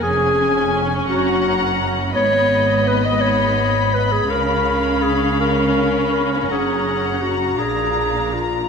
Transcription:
<<
  \new Staff \with { instrumentName = "Violin section" } { \time 6/8 \key des \mixolydian \tempo 4. = 56 aes''4. bes''4. | ces'''2.~ | ces'''2. | bes''2. | }
  \new Staff \with { instrumentName = "Violin section" } { \time 6/8 \key des \mixolydian aes''4. ges''4. | ees''2. | f''2. | ges''4. f''4. | }
  \new Staff \with { instrumentName = "Clarinet" } { \time 6/8 \key des \mixolydian aes'4 r8 ges'4 r8 | des''4 ces''16 ees''16 des''4 ces''16 aes'16 | bes'4 aes'8 bes'4 bes'8 | aes'4 ges'8 aes'4 f'8 | }
  \new Staff \with { instrumentName = "Viola section" } { \time 6/8 \key des \mixolydian des'2. | ces'2. | des'2.~ | des'4. d'4. | }
  \new Staff \with { instrumentName = "Cello section" } { \clef bass \time 6/8 \key des \mixolydian f,4. ges,4. | aes,2. | des2. | ges,4. bes,4. | }
  \new Staff \with { instrumentName = "Double bass section" } { \clef bass \time 6/8 \key des \mixolydian f,,4. ges,,4. | aes,,2. | des,2. | ges,,4. bes,,4. | }
>>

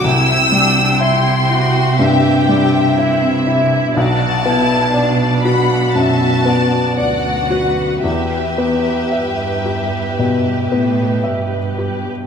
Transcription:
<<
  \new Staff \with { instrumentName = "Violin section" } { \time 4/4 \key e \minor \tempo 4 = 60 e'''4 c'''4 g''4. r8 | a''4. b''8 a''4 fis''4 | e''2. r4 | }
  \new Staff \with { instrumentName = "Violin section" } { \time 4/4 \key e \minor << { g''2 e''8 e''4. | d''4 d''8 fis''8 e''8 d''8 d''8 b'8 | b'1 | } \\ { e'8 d'8 e'8 fis'8 g'4 e'8 e'8 | fis'8 e'8 d'4 fis'4 fis'4 | g'1 | } >> }
  \new Staff \with { instrumentName = "Felt piano" } { \time 4/4 \key e \minor c,8 g8 e''8 e'8 g,8 g8 e''8 e'8 | b,,8 b8 d''8 fis'8 fis,8 b8 d''8 fis'8 | e,8 b8 e''8 g'8 b,8 b8 e''8 g'8 | }
  \new Staff \with { instrumentName = "Cello section" } { \clef bass \time 4/4 \key e \minor c1 | b,2. d,4 | e,4 g,4. a,8 g,4 | }
>>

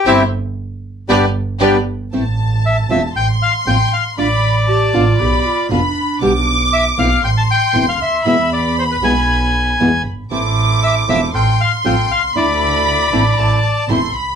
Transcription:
<<
  \new Staff \with { instrumentName = "Violin section" } { \time 4/4 \key g \mixolydian \tempo 4 = 117 <g' c'' e''>8 r4. <g' b' d''>8 r8 <g' b' d''>8 r8 | \key a \minor a''2 c'''2 | b''4 a''4 b''4 b''4 | d'''2 c'''2 |
b''2.~ b''8 r8 | d'''2 c'''2 | b''2 a''4 c'''8 b''8 | }
  \new Staff \with { instrumentName = "Bandoneon" } { \time 4/4 \key g \mixolydian <c' e' g'>8 r4. <b d' g'>8 r8 <b d' g'>8 r8 | \key a \minor r4 e''8 e''8 g''8 f''8 g''8 f''8 | d''2. r4 | r4 e''8 f''8 g''16 a''16 g''8. f''16 e''8 |
e''8 d''8 c''16 b'16 gis''2 r8 | r4 e''8 e''8 g''8 f''8 g''8 f''8 | d''2. r4 | }
  \new Staff \with { instrumentName = "Clarinet" } { \time 4/4 \key g \mixolydian e'8 r4. g'8 r8 g'8 r8 | \key a \minor r1 | r4 g'8 f'8 g'8 f'8 d'4~ | d'8. r2. r16 |
r1 | r1 | r1 | }
  \new Staff \with { instrumentName = "Bandoneon" } { \time 4/4 \key g \mixolydian <c' e'>8 r4. <b d' g'>8 r8 d'8 r8 | \key a \minor r1 | r1 | r1 |
r1 | <c' e' a'>4. <c' e' a'>8 <c' f' a'>8 r8 <c' f' a'>8 r8 | <d' e' a'>4. <d' e' a'>8 <c' e' a'>8 r8 <c' e' a'>8 r8 | }
  \new Staff \with { instrumentName = "Nylon-string guitar" } { \time 4/4 \key g \mixolydian <e g c'>8 r4. <g b d'>8 r8 <g b d'>8 r8 | \key a \minor <e a c' e'>8 r4 <f a c' f'>8 r4 <f a c' f'>8 r8 | <d a d' f'>8 r4 <b, d b d' f'>8 r4 <b, d b d' f'>8 r8 | <b, d g b g'>8 r4 <e a c' e'>8 r4 <e a c' e'>8 r8 |
<b, e gis b e'>8 r4 <b, e gis b e'>8 r4 <b, e gis b e'>8 r8 | <e a c' e'>8 r4 <f a c' f'>8 r4 <f a c' f'>8 r8 | <d a d' e'>8 r4 <e a c' e'>8 r4 <e a c' e'>8 r8 | }
  \new Staff \with { instrumentName = "Double bass" } { \clef bass \time 4/4 \key g \mixolydian g,,8 r4. g,,8 r8 g,,8 r8 | \key a \minor a,,4. e,,8 a,,8 r8 a,,8 r8 | a,,4. a,,8 b,,8 r8 f,,8 r8 | b,,4. b,,8 a,,8 r8 e,,8 d,8 |
e,4. b,,4. e,8 g,,8 | a,,4. e,,8 a,,8 r8 a,,8 c,8 | d,4. a,,8 a,,8 r8 e,,8 c,8 | }
>>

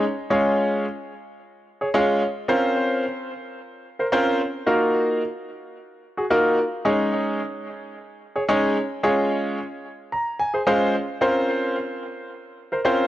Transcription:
\new Staff \with { instrumentName = "Grand piano" } { \time 4/4 \key des \major \tempo 4 = 110 << { r1 | r1 | r1 | r1 |
r2 r8 bes''8 aes''8 f''8 | r1 | } \\ { r8 <aes des' f' aes' des''>4 r4. r16 <aes' des''>16 <aes des' f' aes' des''>8 | r8 <c' des' f' bes' c''>4 r4. r16 <bes' c''>16 <c' des' f' bes' c''>8 | r8 <bes ees' f' ges' bes'>4 r4. r16 <ges' aes'>16 <bes ees' f' ges' bes'>8 | r8 <aes des' ees' aes' des''>4 r4. r16 <aes' des''>16 <aes des' ees' aes' des''>8 |
r8 <aes des' f' aes' des''>4 r4. r16 <aes' c''>16 <aes des' f' aes' c''>8 | r8 <c' des' f' bes' c''>4 r4. r16 <bes' c''>16 <c' des' f' bes' c''>8 | } >> }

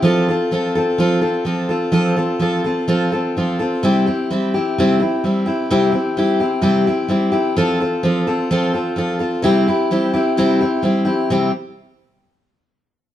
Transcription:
\new Staff \with { instrumentName = "Steel-string acoustic guitar" } { \time 4/4 \key c \major \tempo 4 = 128 <f c' f' a'>8 <c' f' a'>8 <f c' f' a'>8 <c' f' a'>8 <f c' f' a'>8 <c' f' a'>8 <f c' f' a'>8 <c' f' a'>8 | <f c' f' a'>8 <c' f' a'>8 <f c' f' a'>8 <c' f' a'>8 <f c' f' a'>8 <c' f' a'>8 <f c' f' a'>8 <c' f' a'>8 | <c g c' e' g'>8 <c' e' g'>8 <g c' e' g'>8 <c' e' g'>8 <c g c' e' g'>8 <c' e' g'>8 <g c' e' g'>8 <c' e' g'>8 | <c g c' e' g'>8 <c' e' g'>8 <g c' e' g'>8 <c' e' g'>8 <c g c' e' g'>8 <c' e' g'>8 <g c' e' g'>8 <c' e' g'>8 |
<f c' f' a'>8 <c' f' a'>8 <f c' f' a'>8 <c' f' a'>8 <f c' f' a'>8 <c' f' a'>8 <f c' f' a'>8 <c' f' a'>8 | <c g c' e' g'>8 <c' e' g'>8 <g c' e' g'>8 <c' e' g'>8 <c g c' e' g'>8 <c' e' g'>8 <g c' e' g'>8 <c' e' g'>8 | <c g c' e' g'>8 r2. r8 | }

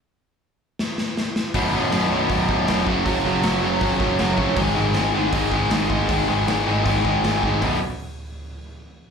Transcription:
<<
  \new Staff \with { instrumentName = "Overdriven electric guitar" } { \clef bass \time 4/4 \key b \major \tempo 4 = 158 r1 | <b,, fis, b,>8 <b,, fis, b,>8 <b,, fis, b,>8 <b,, fis, b,>8 <b,, fis, b,>8 <b,, fis, b,>8 <b,, fis, b,>8 <fis, cis fis>8 | <fis, cis fis>8 <fis, cis fis>8 <fis, cis fis>8 <fis, cis fis>8 <fis, cis fis>8 <fis, cis fis>8 <fis, cis fis>8 <fis, cis fis>8 | <gis, dis gis>8 <gis, dis gis>8 <gis, dis gis>8 <gis, dis gis>8 <gis, dis gis>8 <gis, dis gis>8 <gis, dis gis>8 <gis, dis gis>8 |
<gis, dis gis>8 <gis, dis gis>8 <gis, dis gis>8 <gis, dis gis>8 <gis, dis gis>8 <gis, dis gis>8 <gis, dis gis>8 <gis, dis gis>8 | <b,, fis, b,>8 r2. r8 | }
  \new Staff \with { instrumentName = "Overdriven electric guitar" } { \clef bass \time 4/4 \key b \major r1 | <b,, fis, b,>8 <b,, fis, b,>8 <b,, fis, b,>8 <b,, fis, b,>8 <b,, fis, b,>8 <b,, fis, b,>8 <b,, fis, b,>8 <fis, cis fis>8 | <fis, cis fis>8 <fis, cis fis>8 <fis, cis fis>8 <fis, cis fis>8 <fis, cis fis>8 <fis, cis fis>8 <fis, cis fis>8 <fis, cis fis>8 | <gis, dis gis>8 <gis, dis gis>8 <gis, dis gis>8 <gis, dis gis>8 <gis, dis gis>8 <gis, dis gis>8 <gis, dis gis>8 <gis, dis gis>8 |
<gis, dis gis>8 <gis, dis gis>8 <gis, dis gis>8 <gis, dis gis>8 <gis, dis gis>8 <gis, dis gis>8 <gis, dis gis>8 <gis, dis gis>8 | <b,, fis, b,>8 r2. r8 | }
  \new Staff \with { instrumentName = "Picked electric bass" } { \clef bass \time 4/4 \key b \major r1 | b,,,8 b,,,8 b,,,8 b,,,8 b,,,8 b,,,8 e,,8 fis,,8 | fis,,8 fis,,8 fis,,8 fis,,8 fis,,8 fis,,8 fis,,8 ais,,8 | gis,,8 gis,,8 gis,,8 gis,,8 gis,,8 gis,,8 gis,,8 gis,,8 |
gis,,8 gis,,8 gis,,8 gis,,8 gis,,8 gis,,8 gis,,8 gis,,8 | b,,,8 r2. r8 | }
  \new DrumStaff \with { instrumentName = "Drums" } \drummode { \time 4/4 r4 r4 sn8 sn8 sn8 sn8 | <hho bd>4 <hho sn>4 <hho bd>8 bd8 <hho sn>8 bd8 | <hho bd>4 <hho sn>4 <hho bd>8 bd8 <hho sn>8 bd8 | <hho bd>4 <hho sn>4 <hho bd>8 bd8 <hho sn>8 bd8 |
<hho bd>4 <hho sn>4 <hho bd>8 bd8 <hho sn>8 bd8 | <hho bd tomfh>4 r4 r4 r4 | }
>>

